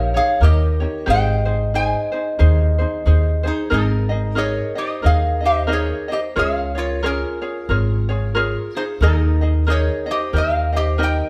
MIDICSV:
0, 0, Header, 1, 5, 480
1, 0, Start_track
1, 0, Key_signature, -4, "major"
1, 0, Tempo, 661521
1, 776, Time_signature, 4, 2, 24, 8
1, 8194, End_track
2, 0, Start_track
2, 0, Title_t, "Resonator guitar played with a steel bar"
2, 0, Program_c, 0, 25
2, 0, Note_on_c, 0, 70, 68
2, 0, Note_on_c, 0, 77, 84
2, 89, Note_off_c, 0, 70, 0
2, 114, Note_off_c, 0, 77, 0
2, 120, Note_on_c, 0, 68, 74
2, 123, Note_on_c, 0, 77, 95
2, 293, Note_off_c, 0, 68, 0
2, 311, Note_on_c, 0, 67, 70
2, 312, Note_off_c, 0, 77, 0
2, 320, Note_on_c, 0, 75, 95
2, 755, Note_off_c, 0, 67, 0
2, 796, Note_on_c, 0, 72, 75
2, 800, Note_on_c, 0, 79, 101
2, 803, Note_off_c, 0, 75, 0
2, 1237, Note_off_c, 0, 72, 0
2, 1272, Note_off_c, 0, 79, 0
2, 1272, Note_on_c, 0, 72, 73
2, 1275, Note_on_c, 0, 80, 91
2, 2481, Note_off_c, 0, 72, 0
2, 2482, Note_off_c, 0, 80, 0
2, 2519, Note_on_c, 0, 63, 51
2, 2521, Note_on_c, 0, 72, 67
2, 2692, Note_off_c, 0, 63, 0
2, 2709, Note_off_c, 0, 72, 0
2, 2709, Note_on_c, 0, 63, 58
2, 2712, Note_on_c, 0, 70, 73
2, 3154, Note_off_c, 0, 63, 0
2, 3178, Note_off_c, 0, 70, 0
2, 3179, Note_on_c, 0, 68, 62
2, 3181, Note_on_c, 0, 73, 80
2, 3444, Note_off_c, 0, 68, 0
2, 3469, Note_on_c, 0, 67, 61
2, 3472, Note_off_c, 0, 73, 0
2, 3473, Note_on_c, 0, 75, 76
2, 3646, Note_off_c, 0, 67, 0
2, 3667, Note_off_c, 0, 75, 0
2, 3671, Note_on_c, 0, 77, 84
2, 3675, Note_on_c, 0, 68, 63
2, 3932, Note_off_c, 0, 68, 0
2, 3958, Note_off_c, 0, 77, 0
2, 3958, Note_on_c, 0, 67, 65
2, 3963, Note_on_c, 0, 75, 83
2, 4130, Note_off_c, 0, 67, 0
2, 4152, Note_off_c, 0, 75, 0
2, 4152, Note_on_c, 0, 68, 60
2, 4159, Note_on_c, 0, 73, 80
2, 4410, Note_off_c, 0, 68, 0
2, 4440, Note_on_c, 0, 67, 59
2, 4441, Note_off_c, 0, 73, 0
2, 4449, Note_on_c, 0, 75, 75
2, 4490, Note_off_c, 0, 67, 0
2, 4498, Note_off_c, 0, 75, 0
2, 4635, Note_on_c, 0, 68, 67
2, 4639, Note_on_c, 0, 77, 89
2, 4892, Note_off_c, 0, 68, 0
2, 4918, Note_on_c, 0, 65, 62
2, 4921, Note_off_c, 0, 77, 0
2, 4925, Note_on_c, 0, 73, 84
2, 5090, Note_off_c, 0, 65, 0
2, 5113, Note_off_c, 0, 73, 0
2, 5122, Note_on_c, 0, 61, 66
2, 5126, Note_on_c, 0, 70, 82
2, 6326, Note_off_c, 0, 61, 0
2, 6360, Note_on_c, 0, 63, 60
2, 6361, Note_off_c, 0, 70, 0
2, 6364, Note_on_c, 0, 72, 77
2, 6410, Note_off_c, 0, 63, 0
2, 6412, Note_off_c, 0, 72, 0
2, 6548, Note_on_c, 0, 63, 66
2, 6555, Note_on_c, 0, 70, 82
2, 6993, Note_off_c, 0, 63, 0
2, 7038, Note_on_c, 0, 68, 72
2, 7040, Note_off_c, 0, 70, 0
2, 7049, Note_on_c, 0, 73, 93
2, 7294, Note_off_c, 0, 68, 0
2, 7327, Note_off_c, 0, 73, 0
2, 7334, Note_on_c, 0, 67, 68
2, 7338, Note_on_c, 0, 75, 86
2, 7500, Note_off_c, 0, 67, 0
2, 7519, Note_off_c, 0, 75, 0
2, 7520, Note_on_c, 0, 70, 67
2, 7532, Note_on_c, 0, 77, 86
2, 7775, Note_off_c, 0, 70, 0
2, 7809, Note_off_c, 0, 77, 0
2, 7810, Note_on_c, 0, 67, 73
2, 7814, Note_on_c, 0, 75, 85
2, 7978, Note_off_c, 0, 67, 0
2, 7997, Note_off_c, 0, 75, 0
2, 8003, Note_on_c, 0, 70, 73
2, 8010, Note_on_c, 0, 79, 98
2, 8194, Note_off_c, 0, 70, 0
2, 8194, Note_off_c, 0, 79, 0
2, 8194, End_track
3, 0, Start_track
3, 0, Title_t, "Vibraphone"
3, 0, Program_c, 1, 11
3, 0, Note_on_c, 1, 73, 76
3, 88, Note_off_c, 1, 73, 0
3, 110, Note_on_c, 1, 73, 76
3, 287, Note_off_c, 1, 73, 0
3, 301, Note_on_c, 1, 70, 78
3, 750, Note_off_c, 1, 70, 0
3, 776, Note_on_c, 1, 75, 82
3, 1227, Note_off_c, 1, 75, 0
3, 1274, Note_on_c, 1, 75, 73
3, 2482, Note_off_c, 1, 75, 0
3, 2507, Note_on_c, 1, 68, 63
3, 2685, Note_off_c, 1, 68, 0
3, 2696, Note_on_c, 1, 63, 66
3, 3147, Note_off_c, 1, 63, 0
3, 3177, Note_on_c, 1, 70, 66
3, 3443, Note_off_c, 1, 70, 0
3, 3462, Note_on_c, 1, 72, 66
3, 3642, Note_off_c, 1, 72, 0
3, 3660, Note_on_c, 1, 70, 66
3, 3924, Note_off_c, 1, 70, 0
3, 3949, Note_on_c, 1, 72, 69
3, 4126, Note_off_c, 1, 72, 0
3, 4140, Note_on_c, 1, 70, 66
3, 4404, Note_off_c, 1, 70, 0
3, 4428, Note_on_c, 1, 72, 68
3, 4514, Note_off_c, 1, 72, 0
3, 4617, Note_on_c, 1, 73, 75
3, 4882, Note_off_c, 1, 73, 0
3, 4908, Note_on_c, 1, 70, 66
3, 5085, Note_off_c, 1, 70, 0
3, 5106, Note_on_c, 1, 65, 69
3, 6318, Note_off_c, 1, 65, 0
3, 6351, Note_on_c, 1, 68, 72
3, 6436, Note_off_c, 1, 68, 0
3, 6543, Note_on_c, 1, 63, 74
3, 6991, Note_off_c, 1, 63, 0
3, 7021, Note_on_c, 1, 70, 77
3, 7285, Note_off_c, 1, 70, 0
3, 7305, Note_on_c, 1, 72, 79
3, 7484, Note_off_c, 1, 72, 0
3, 7505, Note_on_c, 1, 70, 76
3, 7767, Note_off_c, 1, 70, 0
3, 7788, Note_on_c, 1, 72, 73
3, 7966, Note_off_c, 1, 72, 0
3, 7970, Note_on_c, 1, 75, 77
3, 8194, Note_off_c, 1, 75, 0
3, 8194, End_track
4, 0, Start_track
4, 0, Title_t, "Ukulele"
4, 0, Program_c, 2, 24
4, 0, Note_on_c, 2, 63, 78
4, 0, Note_on_c, 2, 67, 80
4, 0, Note_on_c, 2, 70, 72
4, 0, Note_on_c, 2, 73, 86
4, 94, Note_off_c, 2, 73, 0
4, 101, Note_off_c, 2, 70, 0
4, 103, Note_on_c, 2, 73, 54
4, 104, Note_off_c, 2, 63, 0
4, 105, Note_off_c, 2, 67, 0
4, 117, Note_on_c, 2, 63, 45
4, 294, Note_off_c, 2, 63, 0
4, 297, Note_off_c, 2, 73, 0
4, 297, Note_on_c, 2, 70, 54
4, 303, Note_on_c, 2, 63, 56
4, 307, Note_on_c, 2, 67, 56
4, 312, Note_on_c, 2, 73, 57
4, 573, Note_off_c, 2, 73, 0
4, 581, Note_off_c, 2, 67, 0
4, 581, Note_on_c, 2, 73, 52
4, 583, Note_off_c, 2, 70, 0
4, 586, Note_off_c, 2, 63, 0
4, 590, Note_on_c, 2, 67, 47
4, 596, Note_on_c, 2, 63, 45
4, 761, Note_off_c, 2, 67, 0
4, 768, Note_off_c, 2, 63, 0
4, 770, Note_on_c, 2, 67, 74
4, 776, Note_off_c, 2, 73, 0
4, 777, Note_on_c, 2, 63, 71
4, 780, Note_on_c, 2, 68, 83
4, 784, Note_on_c, 2, 72, 80
4, 1045, Note_off_c, 2, 72, 0
4, 1054, Note_on_c, 2, 72, 53
4, 1055, Note_off_c, 2, 68, 0
4, 1057, Note_off_c, 2, 63, 0
4, 1059, Note_off_c, 2, 67, 0
4, 1063, Note_on_c, 2, 68, 47
4, 1065, Note_on_c, 2, 63, 41
4, 1252, Note_off_c, 2, 72, 0
4, 1255, Note_off_c, 2, 63, 0
4, 1257, Note_off_c, 2, 68, 0
4, 1263, Note_on_c, 2, 63, 60
4, 1267, Note_on_c, 2, 68, 61
4, 1270, Note_on_c, 2, 72, 59
4, 1528, Note_off_c, 2, 72, 0
4, 1536, Note_on_c, 2, 72, 55
4, 1538, Note_off_c, 2, 68, 0
4, 1542, Note_off_c, 2, 63, 0
4, 1547, Note_on_c, 2, 68, 49
4, 1551, Note_on_c, 2, 63, 44
4, 1724, Note_off_c, 2, 63, 0
4, 1727, Note_off_c, 2, 68, 0
4, 1731, Note_off_c, 2, 72, 0
4, 1733, Note_on_c, 2, 63, 75
4, 1735, Note_on_c, 2, 68, 80
4, 1740, Note_on_c, 2, 72, 78
4, 2012, Note_off_c, 2, 72, 0
4, 2021, Note_off_c, 2, 63, 0
4, 2021, Note_on_c, 2, 72, 52
4, 2022, Note_off_c, 2, 68, 0
4, 2029, Note_on_c, 2, 68, 47
4, 2041, Note_on_c, 2, 63, 46
4, 2212, Note_off_c, 2, 63, 0
4, 2215, Note_off_c, 2, 72, 0
4, 2216, Note_off_c, 2, 68, 0
4, 2220, Note_on_c, 2, 63, 57
4, 2224, Note_on_c, 2, 68, 69
4, 2229, Note_on_c, 2, 72, 68
4, 2482, Note_off_c, 2, 72, 0
4, 2491, Note_on_c, 2, 72, 61
4, 2492, Note_off_c, 2, 68, 0
4, 2499, Note_off_c, 2, 63, 0
4, 2501, Note_on_c, 2, 68, 53
4, 2508, Note_on_c, 2, 63, 47
4, 2678, Note_off_c, 2, 63, 0
4, 2684, Note_off_c, 2, 68, 0
4, 2684, Note_on_c, 2, 70, 65
4, 2687, Note_on_c, 2, 63, 74
4, 2691, Note_off_c, 2, 72, 0
4, 2693, Note_on_c, 2, 68, 77
4, 2698, Note_on_c, 2, 75, 83
4, 2960, Note_off_c, 2, 75, 0
4, 2969, Note_on_c, 2, 75, 55
4, 2974, Note_off_c, 2, 68, 0
4, 2976, Note_off_c, 2, 70, 0
4, 2978, Note_off_c, 2, 63, 0
4, 2983, Note_on_c, 2, 68, 43
4, 2986, Note_on_c, 2, 63, 42
4, 3154, Note_off_c, 2, 63, 0
4, 3155, Note_off_c, 2, 68, 0
4, 3158, Note_on_c, 2, 70, 68
4, 3163, Note_off_c, 2, 75, 0
4, 3163, Note_on_c, 2, 63, 69
4, 3164, Note_on_c, 2, 68, 78
4, 3171, Note_on_c, 2, 75, 84
4, 3441, Note_off_c, 2, 75, 0
4, 3449, Note_on_c, 2, 75, 51
4, 3453, Note_off_c, 2, 70, 0
4, 3456, Note_off_c, 2, 63, 0
4, 3456, Note_off_c, 2, 68, 0
4, 3468, Note_on_c, 2, 63, 45
4, 3641, Note_off_c, 2, 63, 0
4, 3644, Note_on_c, 2, 70, 57
4, 3650, Note_off_c, 2, 75, 0
4, 3650, Note_on_c, 2, 63, 55
4, 3654, Note_on_c, 2, 68, 63
4, 3658, Note_on_c, 2, 75, 67
4, 3914, Note_off_c, 2, 75, 0
4, 3923, Note_on_c, 2, 75, 45
4, 3928, Note_off_c, 2, 63, 0
4, 3936, Note_off_c, 2, 70, 0
4, 3937, Note_on_c, 2, 63, 42
4, 3941, Note_off_c, 2, 68, 0
4, 4110, Note_off_c, 2, 63, 0
4, 4114, Note_on_c, 2, 70, 66
4, 4117, Note_off_c, 2, 75, 0
4, 4119, Note_on_c, 2, 63, 70
4, 4125, Note_on_c, 2, 68, 74
4, 4125, Note_on_c, 2, 75, 79
4, 4404, Note_off_c, 2, 75, 0
4, 4411, Note_off_c, 2, 70, 0
4, 4413, Note_off_c, 2, 63, 0
4, 4413, Note_on_c, 2, 75, 55
4, 4416, Note_off_c, 2, 68, 0
4, 4424, Note_on_c, 2, 63, 46
4, 4611, Note_off_c, 2, 75, 0
4, 4612, Note_on_c, 2, 70, 74
4, 4614, Note_off_c, 2, 63, 0
4, 4617, Note_on_c, 2, 65, 82
4, 4620, Note_on_c, 2, 68, 80
4, 4624, Note_on_c, 2, 73, 81
4, 4888, Note_off_c, 2, 73, 0
4, 4894, Note_off_c, 2, 68, 0
4, 4897, Note_on_c, 2, 73, 51
4, 4900, Note_off_c, 2, 70, 0
4, 4902, Note_off_c, 2, 65, 0
4, 4903, Note_on_c, 2, 68, 50
4, 4912, Note_on_c, 2, 65, 44
4, 5093, Note_off_c, 2, 73, 0
4, 5094, Note_off_c, 2, 65, 0
4, 5096, Note_off_c, 2, 68, 0
4, 5098, Note_on_c, 2, 70, 75
4, 5102, Note_on_c, 2, 65, 72
4, 5106, Note_on_c, 2, 68, 85
4, 5110, Note_on_c, 2, 73, 85
4, 5372, Note_off_c, 2, 73, 0
4, 5375, Note_off_c, 2, 68, 0
4, 5379, Note_off_c, 2, 65, 0
4, 5381, Note_on_c, 2, 73, 54
4, 5383, Note_off_c, 2, 70, 0
4, 5384, Note_on_c, 2, 68, 51
4, 5388, Note_on_c, 2, 65, 44
4, 5575, Note_off_c, 2, 73, 0
4, 5576, Note_off_c, 2, 65, 0
4, 5577, Note_off_c, 2, 68, 0
4, 5580, Note_on_c, 2, 70, 55
4, 5585, Note_on_c, 2, 65, 57
4, 5587, Note_on_c, 2, 68, 62
4, 5592, Note_on_c, 2, 73, 71
4, 5860, Note_off_c, 2, 73, 0
4, 5864, Note_off_c, 2, 70, 0
4, 5866, Note_off_c, 2, 65, 0
4, 5868, Note_off_c, 2, 68, 0
4, 5868, Note_on_c, 2, 73, 55
4, 5876, Note_on_c, 2, 68, 52
4, 5884, Note_on_c, 2, 65, 48
4, 6051, Note_off_c, 2, 65, 0
4, 6056, Note_on_c, 2, 70, 77
4, 6059, Note_off_c, 2, 73, 0
4, 6060, Note_off_c, 2, 68, 0
4, 6060, Note_on_c, 2, 65, 79
4, 6069, Note_on_c, 2, 68, 83
4, 6069, Note_on_c, 2, 73, 88
4, 6342, Note_off_c, 2, 70, 0
4, 6344, Note_off_c, 2, 65, 0
4, 6349, Note_off_c, 2, 68, 0
4, 6349, Note_off_c, 2, 73, 0
4, 6359, Note_on_c, 2, 68, 46
4, 6364, Note_on_c, 2, 65, 42
4, 6542, Note_off_c, 2, 68, 0
4, 6543, Note_off_c, 2, 65, 0
4, 6544, Note_on_c, 2, 70, 77
4, 6546, Note_on_c, 2, 63, 67
4, 6551, Note_on_c, 2, 68, 79
4, 6555, Note_on_c, 2, 75, 83
4, 6821, Note_off_c, 2, 75, 0
4, 6826, Note_off_c, 2, 70, 0
4, 6827, Note_off_c, 2, 63, 0
4, 6829, Note_on_c, 2, 75, 49
4, 6830, Note_off_c, 2, 68, 0
4, 6838, Note_on_c, 2, 68, 49
4, 6842, Note_on_c, 2, 63, 42
4, 7012, Note_off_c, 2, 63, 0
4, 7014, Note_off_c, 2, 68, 0
4, 7014, Note_on_c, 2, 70, 71
4, 7015, Note_off_c, 2, 75, 0
4, 7020, Note_on_c, 2, 63, 81
4, 7023, Note_on_c, 2, 68, 77
4, 7024, Note_on_c, 2, 75, 85
4, 7291, Note_off_c, 2, 75, 0
4, 7300, Note_on_c, 2, 75, 53
4, 7301, Note_off_c, 2, 70, 0
4, 7303, Note_off_c, 2, 63, 0
4, 7306, Note_off_c, 2, 68, 0
4, 7312, Note_on_c, 2, 63, 44
4, 7492, Note_off_c, 2, 63, 0
4, 7495, Note_off_c, 2, 75, 0
4, 7496, Note_on_c, 2, 70, 54
4, 7500, Note_on_c, 2, 63, 58
4, 7502, Note_on_c, 2, 67, 62
4, 7513, Note_on_c, 2, 75, 62
4, 7773, Note_off_c, 2, 75, 0
4, 7779, Note_off_c, 2, 67, 0
4, 7782, Note_on_c, 2, 75, 49
4, 7783, Note_off_c, 2, 70, 0
4, 7785, Note_off_c, 2, 63, 0
4, 7788, Note_on_c, 2, 67, 47
4, 7798, Note_on_c, 2, 63, 42
4, 7964, Note_off_c, 2, 63, 0
4, 7964, Note_off_c, 2, 67, 0
4, 7967, Note_on_c, 2, 70, 72
4, 7970, Note_off_c, 2, 75, 0
4, 7972, Note_on_c, 2, 63, 76
4, 7976, Note_on_c, 2, 67, 72
4, 7979, Note_on_c, 2, 75, 76
4, 8194, Note_off_c, 2, 63, 0
4, 8194, Note_off_c, 2, 67, 0
4, 8194, Note_off_c, 2, 70, 0
4, 8194, Note_off_c, 2, 75, 0
4, 8194, End_track
5, 0, Start_track
5, 0, Title_t, "Upright bass"
5, 0, Program_c, 3, 32
5, 0, Note_on_c, 3, 34, 107
5, 128, Note_off_c, 3, 34, 0
5, 293, Note_on_c, 3, 39, 94
5, 606, Note_off_c, 3, 39, 0
5, 779, Note_on_c, 3, 32, 97
5, 1402, Note_off_c, 3, 32, 0
5, 1739, Note_on_c, 3, 39, 104
5, 2050, Note_off_c, 3, 39, 0
5, 2216, Note_on_c, 3, 39, 88
5, 2528, Note_off_c, 3, 39, 0
5, 2697, Note_on_c, 3, 32, 103
5, 3320, Note_off_c, 3, 32, 0
5, 3658, Note_on_c, 3, 39, 88
5, 4281, Note_off_c, 3, 39, 0
5, 4618, Note_on_c, 3, 37, 101
5, 5241, Note_off_c, 3, 37, 0
5, 5578, Note_on_c, 3, 32, 89
5, 6201, Note_off_c, 3, 32, 0
5, 6534, Note_on_c, 3, 39, 104
5, 7159, Note_off_c, 3, 39, 0
5, 7495, Note_on_c, 3, 39, 91
5, 8120, Note_off_c, 3, 39, 0
5, 8194, End_track
0, 0, End_of_file